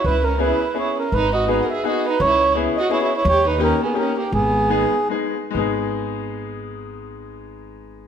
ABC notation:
X:1
M:3/4
L:1/16
Q:"Swing" 1/4=165
K:G#m
V:1 name="Accordion"
B2 A2 B4 c2 A2 | B2 d2 B3/2 f/2 e2 d2 B2 | c4 z2 d2 (3c2 c2 c2 | c2 B2 A2 G2 A2 =G2 |
G8 z4 | z12 | z12 |]
V:2 name="Violin"
E2 C2 E4 E2 C2 | D2 F2 D3/2 A/2 G2 F2 D2 | E4 z2 F2 (3E2 E2 E2 | =G2 D2 C2 B,2 C2 A,2 |
B,8 z4 | z12 | z12 |]
V:3 name="Upright piano"
z4 [B,CEG]2 z2 [B,CEG]2 z2 | z4 [B,DFG]2 z2 [B,DFG]2 z2 | z4 [B,CEG]2 z2 [B,CEG]2 z2 | z4 [A,CD=G]2 z2 [A,CDG]2 z2 |
z4 [G,B,DG]2 z2 [G,B,DG]2 z2 | [G,B,DG]12- | [G,B,DG]12 |]
V:4 name="Upright bass" clef=bass
C,,8 z4 | G,,,8 z4 | C,,8 z4 | D,,8 z4 |
G,,,8 z4 | G,,,12- | G,,,12 |]